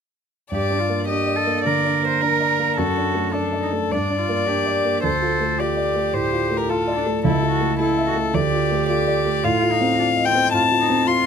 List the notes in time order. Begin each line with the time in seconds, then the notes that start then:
0.51 G2 G4 D5
0.71 D4
0.79 F4
0.89 A#3
1.08 D4 G4 D#5
1.28 D5
1.36 A4
1.46 A#3
1.64 D3 A#4 D5
1.84 D4
2.03 A#3
2.08 C5
2.21 D4 A#4
2.40 D5
2.59 A#3
2.77 F#2 F#4 A4
2.96 D4
3.15 A3
3.33 D4 A4
3.52 D5
3.62 D#4
3.72 A3
3.91 G2 D4 D5
4.10 D4
4.20 F4
4.29 A#3
4.48 D4 G4
4.66 D5
4.85 A#3
5.03 D2 A4 C5
5.22 F4
5.40 A3
5.59 F4 G4 D5
5.77 D5
5.95 A3
6.14 A2 C5
6.32 F4
6.50 A3
6.57 A#4
6.69 F4 A4
6.87 D5
6.97 D4
7.06 A3
7.24 C#2 E4 A4
7.43 E4
7.51 F#4
7.61 A3
7.79 E4 A4
7.98 E5
8.07 F#4
8.16 A3
8.34 D2 G4 D5
8.53 F4
8.71 A3
8.88 F4 D5
9.07 D5
9.26 A3
9.44 A2 F4 F5
9.63 F4
9.72 D#4
9.81 C4
9.98 D4 F4
10.17 D#5
10.25 C4 G5
10.35 C4
10.53 A2 F4 A5
10.72 F4
10.80 D#4
10.90 C4
11.08 F4 C6